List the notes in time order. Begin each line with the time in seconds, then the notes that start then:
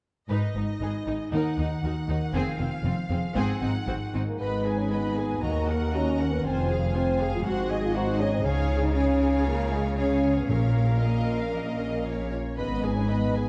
0.29 G#1 G#2 D#4 B4 D#5
0.55 G#1 G#2 D#4
0.81 G#1 G#2 D#4 G#4 B4
1.07 G#1 G#2 D#4 G#4
1.32 D#2 D#3 D#4 A#4 F#5
1.58 D#2 D#4
1.83 D#2 D#4 F#4 A#4
2.08 D#2 D#4 F#4
2.33 F1 F2 F3 C4 G#4 F5
2.59 F1 F2 C4 F4
2.84 F1 F2 C4 F4 C5
3.10 F1 F2 C4 G#4
3.35 G#1 G#2 C4 G#4 F#5
3.61 G#1 G#2 C4 D#4
3.87 G#1 G#2 C4 F#4 G#4
4.14 G#1 G#2 C4 D#4 F#4
4.27 A#3
4.40 G#1 G#2 B3 B4 D#5 B5
4.66 D#4 G#4 B4 G#5
4.78 C#4
4.91 B3 G#4 B4 D#5 B5
5.16 D#4 G#4 B4 G#5
5.42 D#2 D#3 A#3 F#4 D#5 A#5
5.68 D#4 A#4 F#5
5.93 C#4 F#4 A#4 D#5 A#5
6.19 F#4 A#4 F#5
6.32 B3
6.44 F1 F2 F3 C4 F4 C5 G#5
6.69 F4 G#4 F5
6.94 C4 F4 C5 G#5
7.20 G#4 F5
7.34 F4
7.44 G#1 G#2 F#4 C5 F#5
7.70 C4 G#4 D#5
7.84 F4
7.94 D#4 F#4 G#4 C5 F#5
8.18 C#4 D#4 G#4 D#5
8.34 C4
8.44 C#2 C#3 C#4 G#4 C#5 F5
8.70 C#4
8.84 D#4
8.94 C#4 G#4 C#5 F5
9.20 F4
9.46 G#3 A#3
9.72 G#3 C#4
9.96 C#4 G#4 C#5 F5
10.23 F4
10.37 B3
10.48 A#1 A#2 A#3 A#4 C#5 F5
10.75 C#4
11.01 A#4 D#5
11.27 F4
11.41 F5
11.53 F3 D#5
11.79 C#4
12.05 A#4 C#5
12.31 F4
12.57 G#1 G#2 B3 B4 D#5 B5
12.83 D#4 G#4 B4 G#5
12.96 C#4
13.09 B3 B4 D#5 B5
13.35 G#4 B4 G#5